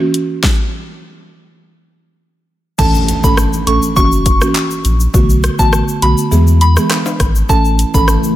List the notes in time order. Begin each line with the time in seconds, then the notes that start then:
0.00 E3 A#3 C#4 F#4
0.14 closed hi-hat
0.43 kick, snare
2.78 A1 E3 A3 C#4 A4 A5, kick, crash, impact, shaker
2.94 shaker
3.08 closed hi-hat, shaker
3.23 G#1 E3 A3 C#4 A4 B5, kick, shaker
3.37 cross-stick, shaker
3.53 shaker
3.67 A1 E3 A3 C#4 A4 C#6, closed hi-hat, shaker
3.82 shaker
3.96 F#1 E3 A#3 C#4 F#4 C#6, kick, shaker
4.12 shaker
4.26 kick, closed hi-hat, shaker
4.41 E3 A#3 C#4 F#4, cross-stick, shaker
4.55 clap, shaker
4.71 shaker
4.85 A#1, closed hi-hat, shaker
5.00 shaker
5.14 B1 D3 A3 B3 F#4, kick, shaker
5.30 shaker
5.43 cross-stick, closed hi-hat, shaker
5.59 A1 D3 A3 B3 F#4 A5, kick, shaker
5.73 cross-stick, shaker
5.88 shaker
6.02 B1 D3 A3 B3 F#4 B5, closed hi-hat, shaker
6.18 shaker
6.31 E2 E3 G#3 B3 G#4, shaker
6.47 shaker
6.61 B5, closed hi-hat, shaker
6.76 E3 G#3 B3 G#4, cross-stick, shaker
6.90 cross-stick, clap, high timbale, shaker
7.06 high timbale, shaker
7.20 G#1, kick, cross-stick, closed hi-hat, shaker
7.35 shaker
7.49 A1 C#3 E3 A3 C#4 E4 A4 A5, kick, shaker
7.65 shaker
7.79 closed hi-hat, shaker
7.94 G#1 E3 A3 C#4 A4 B5, kick, shaker
8.08 cross-stick, shaker
8.24 shaker